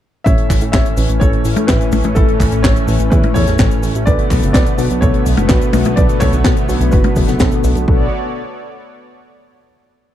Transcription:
0.24 A1 A2 E3 A3 C#4 E4 A4 C#5 E5, kick, closed hi-hat, cabasa
0.38 closed hi-hat
0.50 A1, kick, clap, open hi-hat, cabasa
0.61 A2, closed hi-hat, cabasa
0.72 A1 C#5 E5, kick, snare, clap, closed hi-hat, cabasa
0.85 closed hi-hat, cabasa
0.97 A1 A2 A3 C#4 E4 B4, open hi-hat, cabasa
1.09 A1, closed hi-hat, cabasa
1.20 A1 A4 C#5, kick, closed hi-hat, cabasa
1.33 closed hi-hat
1.45 A1, open hi-hat, cabasa
1.56 A2, closed hi-hat, high tom, cabasa
1.67 A1 E4 B4, kick, snare, clap, closed hi-hat, cabasa
1.81 closed hi-hat, cabasa
1.92 A1, open hi-hat, high tom, cabasa
2.04 A1, closed hi-hat, high tom, cabasa
2.15 A1 A2 A3 C#4 E4 A4, kick, closed hi-hat, cabasa
2.28 closed hi-hat
2.40 A1, kick, clap, open hi-hat, cabasa
2.52 A1, closed hi-hat, cabasa
2.63 A1 A4 C#5, kick, snare, clap, closed hi-hat, cabasa
2.76 closed hi-hat, cabasa
2.88 A1 A2 A3 C#4 E4 B4, open hi-hat, cabasa
2.99 A1, closed hi-hat, cabasa
3.10 E2 E4 B4, kick, closed hi-hat, cabasa
3.23 closed hi-hat, high tom
3.34 E2 A4 C#5, kick, open hi-hat, cabasa
3.47 E2, snare, closed hi-hat, cabasa
3.58 A1, kick, snare, clap, closed hi-hat, cabasa
3.71 closed hi-hat, cabasa
3.83 A1, open hi-hat, cabasa
3.95 A1, closed hi-hat, cabasa
4.06 B1 B2 D3 A3 B3 D4 F#4 A4 B4 D5, kick, closed hi-hat, cabasa
4.19 closed hi-hat
4.30 B1, kick, clap, open hi-hat, cabasa
4.43 F#1, closed hi-hat, cabasa
4.53 B1 B4 D5, kick, snare, clap, closed hi-hat, cabasa
4.66 closed hi-hat, cabasa
4.78 B1 B2 B3 D4 F#4 B4, open hi-hat, cabasa
4.90 B1, closed hi-hat, cabasa
5.01 B1 A4 C#5, kick, closed hi-hat, cabasa
5.14 closed hi-hat
5.26 B1, open hi-hat, cabasa
5.37 F#1, closed hi-hat, high tom, cabasa
5.48 B1 F#4 B4, kick, snare, clap, closed hi-hat, cabasa
5.61 closed hi-hat, cabasa
5.73 B1, open hi-hat, high tom, cabasa
5.85 B1, closed hi-hat, high tom, cabasa
5.96 B1 B2 B3 D4 F#4 A4 B4 D5, kick, closed hi-hat, cabasa
6.09 closed hi-hat, cabasa
6.20 B1 A4 C#5, kick, clap, open hi-hat, high tom, cabasa
6.33 B1, closed hi-hat, cabasa
6.44 B1, kick, snare, clap, closed hi-hat, cabasa
6.56 closed hi-hat, cabasa
6.69 B1 B2 B3 D4 F#4 B4, open hi-hat, cabasa
6.81 B1, closed hi-hat, cabasa
6.91 F#1 F#4 B4, kick, closed hi-hat, cabasa
7.04 closed hi-hat, high tom
7.16 F#1, kick, open hi-hat, cabasa
7.28 F#1 B2 B3 D4 F#4 A4, snare, closed hi-hat, cabasa
7.39 B1 B2 B3 D4 F#4 A4, kick, snare, clap, closed hi-hat, cabasa
7.51 closed hi-hat, cabasa
7.64 B1, open hi-hat, cabasa
7.75 B1, closed hi-hat, cabasa
7.88 B1 B3 D4 F#4 A4 C#5 D5, kick

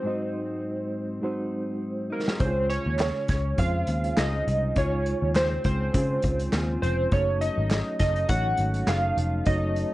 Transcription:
Already playing: G#3 D#4 F#4 C5
0.03 G#2 F#3 G#3 D#4 F#4 D#5
0.07 C4 D#4
1.22 G#2 F#3 G#3 C4 D#4 F#4 C5
2.10 C4 D#4 A#4
2.14 F#3
2.28 snare
2.39 C#2 C#3 G#3 C#4 D#4 C5 C#5, kick, closed hi-hat
2.43 F4 G#4
2.48 F4
2.70 C#5, closed hi-hat
2.86 D#2
2.99 snare, clap, closed hi-hat
3.28 C#2 C#5, kick, snare, closed hi-hat
3.57 F2 C#3 G#3 C4 C#4 F4 C5 F5, kick, closed hi-hat
3.62 G#4
3.87 D#2, closed hi-hat
4.04 closed hi-hat
4.17 C#2 C#3 C4 F4 D#5, snare, clap, closed hi-hat
4.21 G#4
4.47 C2, closed hi-hat
4.75 C#2 C#3 G#3 C#4 D#4 F4 G#4 C#5, kick, closed hi-hat
4.84 F4
5.06 closed hi-hat
5.22 D#2
5.35 C5, snare, clap, closed hi-hat
5.64 C#2 C4 F4 G#4 C5, kick, closed hi-hat
5.93 C#3 G#3 C4 C#4 F4 C5, kick, closed hi-hat
5.97 G#4
6.22 C#2, kick, closed hi-hat
6.40 closed hi-hat
6.52 D#2 C#3 C4 F4, snare, clap, closed hi-hat
6.56 G#4
6.82 F1 C5, closed hi-hat
7.11 F#1 F#3 A3 C#4 D#4 F#4 A4 C#5, kick, closed hi-hat
7.41 D#5, closed hi-hat
7.58 G#1
7.71 snare, clap, closed hi-hat
7.99 F#1 D#4 A4 D#5, kick, snare, closed hi-hat
8.03 C#4
8.16 closed hi-hat
8.28 A1 F#3 A3 C#4 D#4 F#4 C#5 F#5, kick, closed hi-hat
8.32 A4
8.58 G#1, closed hi-hat
8.74 closed hi-hat
8.87 F#1 F#3 C#4 D#4 F5, snare, clap, closed hi-hat
8.91 A4
9.18 F1, closed hi-hat
9.46 F#1 F#3 A3 C#4 D#4 F#4 A4 C#5 D#5, kick, closed hi-hat
9.76 closed hi-hat

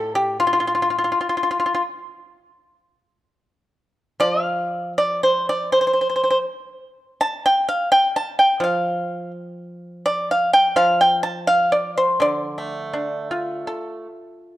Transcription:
Already playing: A2 A4
0.15 G4
0.40 F4
0.47 F4
0.53 F4
0.60 F4
0.67 F4
0.75 F4
0.82 F4
0.90 F4
0.98 F4
1.04 F4
1.12 F4
1.21 F4
1.29 F4
1.37 F4
1.43 F4
1.51 F4
1.60 F4
1.66 F4
1.75 F4
4.20 F3 D5
4.43 F5
4.98 D5
5.23 C5
5.49 D5
5.72 C5
5.81 C5
5.87 C5
5.93 C5
6.01 C5
6.10 C5
6.16 C5
6.24 C5
6.30 C5
7.21 A5
7.46 G5
7.69 F5
7.92 G5
8.16 A5
8.39 G5
8.60 F3 F5
10.06 D5
10.31 F5
10.53 G5
10.76 F3 F5
11.01 G5
11.23 A5
11.47 F5
11.72 D5
11.97 C5
12.20 D3 D5
12.58 A3
12.93 D4
13.31 F4
13.67 A4

